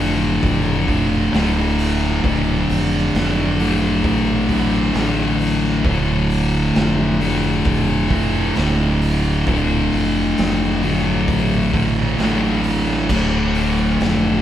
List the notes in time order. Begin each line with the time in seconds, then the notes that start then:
Already playing: F1 D2 A2 D3
0.00 D2 A2
0.43 F1, kick, open hi-hat
0.87 D2 A2 D3, kick, open hi-hat
1.33 D1 D2 A2, snare, open hi-hat
1.37 D3
1.79 open hi-hat
2.04 snare
2.23 D1 D2 A2 D3, kick, open hi-hat
2.69 F1, open hi-hat
3.14 F1, snare, open hi-hat
3.59 D2 A2 D3, open hi-hat
4.04 A1, kick, open hi-hat
4.49 D2 A2 D3, kick, open hi-hat
4.93 A1 D2 A2, snare, open hi-hat
4.98 D3
5.40 open hi-hat
5.64 snare
5.84 D1 D2 A2, kick, open hi-hat
5.88 D3
6.30 open hi-hat
6.75 F1, snare, open hi-hat
7.20 D2 A2 D3, open hi-hat
7.65 F1, kick, open hi-hat
8.09 D2 A2 D3, kick, open hi-hat
8.55 D1 D2 A2 D3, snare, open hi-hat
9.02 open hi-hat
9.45 D1 D2 A2, kick, open hi-hat
9.50 D3
9.92 F1, open hi-hat
10.38 F1, snare, open hi-hat
10.83 A2 D3, open hi-hat
10.87 D2
11.28 A1, kick, open hi-hat
11.73 D2 A2 D3, kick, open hi-hat
12.18 A1 D2 A2 D3, snare, open hi-hat
12.64 open hi-hat
12.89 snare
13.09 D1 D2 A2, kick, crash
13.14 D3
13.55 open hi-hat
14.00 F1, snare, open hi-hat